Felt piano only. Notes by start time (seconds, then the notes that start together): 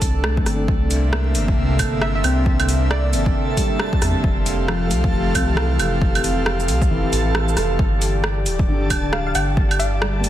Already playing: A3 C4
0.24 A3
0.42 C4
0.56 D4
1.13 A#3
2.24 C4
3.13 C4
3.57 G3
4.68 F3
4.87 A3
5.35 C3
5.54 E3
6.91 E3
8.68 D3
10.02 G3
10.20 A#3